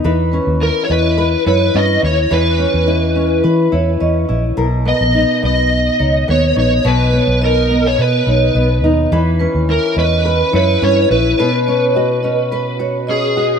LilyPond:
<<
  \new Staff \with { instrumentName = "Vibraphone" } { \time 4/4 \key b \major \tempo 4 = 106 r8 b'16 r8. dis''8. r16 cis''16 r16 b'8. r16 | b'8 cis''8 dis''8 dis''16 r16 b'8 cis''16 r16 dis''8. r16 | r8 b'16 r8. dis''8. r16 cis''16 r16 b'8. r16 | b'8 cis''8 dis''8 dis''16 r16 b'8 cis''16 r16 dis''8. r16 |
r8 b'16 r8. dis''8. r16 cis''16 r16 b'8. r16 | b'8 cis''8 dis''8 dis''16 r16 b'8 cis''16 r16 dis''8. r16 | }
  \new Staff \with { instrumentName = "Electric slide guitar" } { \time 4/4 \key b \major r4 ais'16. cis''32 b'4 b'8 dis''8 cis''8 | b'2 r2 | r8 dis''4 dis''4. cis''8 cis''8 | b'4 ais'8. cis''16 b'4. r8 |
r4 ais'8 b'4 b'8 cis''8 b'8~ | b'2~ b'8 r8 gis'4 | }
  \new Staff \with { instrumentName = "Nylon-string guitar" } { \time 4/4 \key b \major <e b'>8 cis'8 e'8 cis'8 b'8 e'8 cis'8 e'8 | <e b'>8 cis'8 e'8 cis'8 b'8 e'8 cis'8 e'8 | <b, ais'>8 b8 dis'8 b4 dis'8 b8 dis'8 | b,8 b8 dis'8 b4 dis'8 b8 dis'8 |
<e b'>8 cis'8 e'8 cis'8 b'8 e'8 cis'8 e'8 | <b, b'>8 cis'8 fis'8 cis'8 b'8 fis'8 cis'8 fis'8 | }
  \new Staff \with { instrumentName = "Fingered electric bass" } { \clef bass \time 4/4 \key b \major e,8. dis,8 r16 e,4 fis,8 g,8 dis,8 | e,8. e,4~ e,16 e8 e,8 e,8 ais,,8 | b,,8. ais,,8 r16 b,,4 cis,8 dis,8 ais,,8 | b,,8. b,,4~ b,,16 b,8 b,,8 b,,8 dis,8 |
e,8. dis,8 r16 e,4 fis,8 g,8 ais,,8 | r1 | }
>>